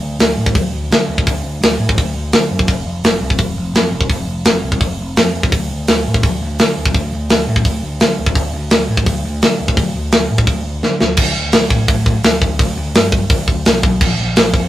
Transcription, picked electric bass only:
0.01 0.18 D2 medium
0.19 0.36 D2 medium
0.37 0.53 A2 medium
0.55 0.71 D2 medium
0.73 0.89 D2 medium
0.91 1.07 D3 medium
1.08 1.25 D2 medium
1.27 1.43 D2 medium
1.44 1.60 D2 medium
1.61 1.78 D2 loud
1.80 1.96 A2 medium
1.98 2.14 D2 loud
2.15 2.31 D2 medium
2.33 2.49 D3 medium
2.51 2.67 F#2 medium
2.68 2.85 F1 medium
2.86 3.02 F1 medium
3.04 3.20 F1 loud
3.21 3.38 C2 medium
3.39 3.55 F1 loud
3.57 3.73 F1 medium
3.74 3.90 F2 medium
3.92 4.08 F1 medium
4.10 4.26 F1 medium
4.27 4.44 F1 medium
4.45 4.62 F1 loud
4.63 4.80 C2 medium
4.81 4.97 F1 medium
4.99 5.15 F1 medium
5.17 5.33 F2 medium
5.35 5.51 F1 medium
5.52 5.68 D2 loud
5.71 5.87 D2 medium
5.89 6.04 D2 medium
6.07 6.22 A2 medium
6.23 6.39 D2 loud
6.42 6.57 D2 medium
6.60 6.75 D3 medium
6.78 6.93 D2 medium
6.94 7.10 D2 medium
7.13 7.28 D2 medium
7.31 7.46 D2 loud
7.49 7.64 A2 medium
7.65 7.81 D2 loud
7.83 7.99 D2 medium
8.01 8.17 D3 medium
8.19 8.35 D2 medium
8.36 8.52 D2 medium
8.53 8.69 D2 medium
8.72 8.87 D2 medium
8.90 9.05 A2 medium
9.06 9.22 D2 loud
9.25 9.40 D2 medium
9.42 9.58 D3 medium
9.60 9.76 D2 medium
9.77 9.93 D2 loud
9.96 10.11 D2 medium
10.13 10.29 D2 medium
10.30 10.46 A2 medium
10.47 10.64 D2 loud
10.65 10.81 D2 medium
10.84 10.99 D3 medium
11.02 11.17 D2 medium
11.17 11.32 D2 loud
11.37 11.51 D2 medium
11.55 11.68 D2 loud
11.70 11.85 A2 medium
11.88 12.16 A2 loud
12.24 12.38 D2 medium
12.41 12.56 D2 loud
12.60 12.74 D2 loud
12.77 12.91 D2 medium
12.94 13.23 G2 loud
13.30 13.44 D2 loud
13.47 13.62 D2 medium
13.66 13.80 C2 medium
13.83 13.97 B1 loud
14.01 14.15 A#1 loud
14.20 14.33 A#1 medium
14.37 14.51 A#1 loud
14.54 14.68 F2 medium

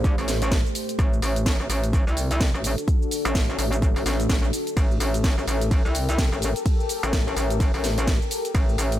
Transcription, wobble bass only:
0.00 0.16 A#1 loud
0.18 0.63 A1 loud
0.99 1.21 A1 loud
1.22 1.58 A1 loud
1.60 1.68 A1 loud
1.70 2.05 A1 loud
2.07 2.52 C2 loud
2.54 2.76 A1 loud
3.25 3.57 A1 loud
3.59 3.94 A1 loud
3.96 4.04 A1 loud
4.06 4.28 A1 loud
4.29 4.52 A1 loud
4.77 4.99 A1 loud
5.00 5.36 A1 loud
5.38 5.46 A1 loud
5.48 5.83 A1 loud
5.85 6.30 C2 loud
6.32 6.54 A1 loud
7.03 7.35 A1 loud
7.36 7.72 A1 loud
7.74 8.19 A1 loud
8.55 8.77 A1 loud
8.78 8.99 A1 loud

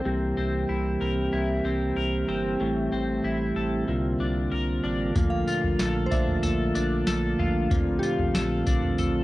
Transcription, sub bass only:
0.05 0.33 C2 medium
0.37 0.65 C2 medium
0.69 0.97 C2 medium
1.01 1.29 C2 medium
1.33 1.61 C2 loud
1.64 1.93 C2 medium
1.96 2.25 C2 medium
2.28 2.56 G1 medium
2.60 2.89 A1 medium
2.92 3.21 A1 medium
3.24 3.52 A1 medium
3.56 3.84 A1 medium
3.88 4.16 C2 loud
4.20 4.48 C2 loud
4.52 4.80 C2 loud
4.84 5.12 A1 medium
5.16 5.44 A#1 medium
5.64 5.78 A#1 loud
5.80 6.08 A#1 loud
6.12 6.40 A#1 medium
6.43 6.71 A#1 loud
6.75 7.04 A#1 loud
7.07 7.35 A#1 loud
7.39 7.67 A#1 loud
7.71 7.99 A#1 loud
8.19 8.33 A#1 medium
8.35 8.63 A#1 loud
8.67 8.95 A#1 medium
8.99 9.24 A#1 loud

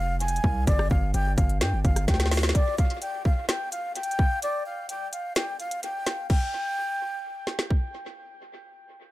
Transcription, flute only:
0.00 0.18 F5 loud
0.20 0.64 G#5 medium
0.67 0.88 D5 loud
0.90 1.11 F5 medium
1.14 1.35 G5 medium
1.37 1.58 F5 medium
1.61 1.82 G5 medium
1.84 2.05 F5 medium
2.08 2.34 G5 medium
2.55 2.76 D5 loud
2.78 2.99 F5 medium
3.02 3.23 G5 medium
3.25 3.46 F5 medium
3.49 3.70 G5 medium
3.72 3.93 F5 medium
3.95 4.39 G5 medium
4.43 4.63 D5 loud
4.66 4.87 F5 medium
4.89 5.10 G5 medium
5.12 5.33 F5 medium
5.36 5.57 G5 medium
5.60 5.81 F5 medium
5.83 6.27 G5 medium
6.30 7.67 G5 medium

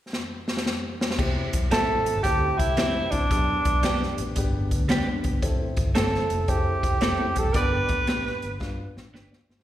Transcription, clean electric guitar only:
1.71 1.89 G3 medium
1.71 1.90 C4 medium
1.71 1.90 E4 medium
1.71 1.90 G4 medium
2.77 2.96 G3 medium
2.77 2.96 C4 medium
2.77 2.96 E4 medium
2.77 2.96 G4 medium
3.83 4.02 G3 medium
3.83 4.02 B3 medium
3.83 4.02 D4 medium
3.83 4.03 G4 medium
4.89 5.07 G3 medium
4.89 5.08 B3 medium
4.89 5.08 D4 medium
4.89 5.08 G4 medium
5.95 6.13 A3 medium
5.95 6.14 C4 medium
5.95 6.14 E4 medium
5.95 6.14 A4 medium
7.01 7.20 A3 medium
7.01 7.20 C4 medium
7.01 7.21 E4 medium
7.01 7.21 A4 medium
8.07 8.26 B3 medium
8.07 8.26 D4 medium
8.07 8.27 G4 medium
8.07 8.27 B4 medium
9.14 9.33 B3 medium
9.14 9.33 D4 medium
9.14 9.33 G4 medium
9.14 9.33 B4 medium

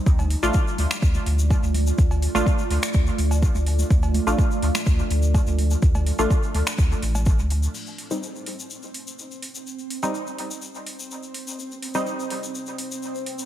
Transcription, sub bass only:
0.06 0.36 D2 loud
0.43 0.50 A1 loud
0.78 0.86 D2 loud
1.02 1.18 D2 medium
1.26 1.56 D2 loud
1.63 1.92 D2 loud
1.98 2.28 D2 loud
2.35 2.42 A1 medium
2.70 2.78 D2 loud
2.94 3.10 D2 medium
3.19 3.48 D2 loud
3.55 3.84 D2 medium
3.91 4.20 D2 loud
4.27 4.34 A1 loud
4.62 4.70 D2 loud
4.86 5.02 D2 medium
5.10 5.40 D2 loud
5.47 5.76 D2 loud
5.82 6.12 D2 loud
6.19 6.26 A1 medium
6.54 6.63 D2 loud
6.78 6.94 D2 medium
7.02 7.40 A1 loud
7.39 7.68 D2 medium

